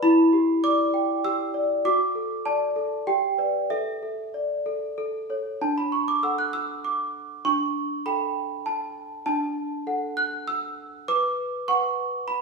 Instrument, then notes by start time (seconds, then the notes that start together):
celesta
0.03 E4 B5
0.33 G4
0.64 D5 D6
0.94 G5
1.24 G4 E6
1.54 D5
1.85 F#4 D6
2.15 A4
2.45 D5 A5
2.76 A4
3.07 G4 G5
3.38 B4 D5
3.70 A4 E5
4.03 A4
4.34 D5
4.66 A4
4.98 A4
5.30 A4 C#5
5.61 D4 A5
5.78 B5
5.92 C#6
6.08 D6
6.23 A4 F#5 E6
6.38 F#6
6.53 E6
6.85 D6
7.45 D4 C#6
8.06 A4 G5 B5
8.66 A5
9.26 D4 A5
9.87 A4 F#5
10.17 F#6
10.47 E6
11.08 B4 D6
11.68 B4 F#5 C#6
12.28 B5